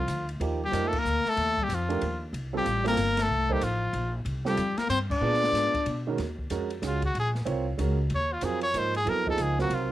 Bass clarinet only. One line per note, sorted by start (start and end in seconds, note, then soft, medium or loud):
0.00 0.26 F3 medium
0.61 0.86 G3 medium
0.85 0.98 A3 medium
0.96 1.29 A#3 medium
1.27 1.62 A3 medium
1.61 1.74 G3 medium
1.73 2.23 F3 medium
2.54 2.84 G3 medium
2.86 3.20 A#3 medium
3.18 3.54 A3 medium
3.52 3.64 G3 medium
3.63 4.14 F3 medium
4.46 4.79 G3 medium
4.78 4.89 A#3 medium
4.90 4.99 C4 medium
5.10 6.02 D4 medium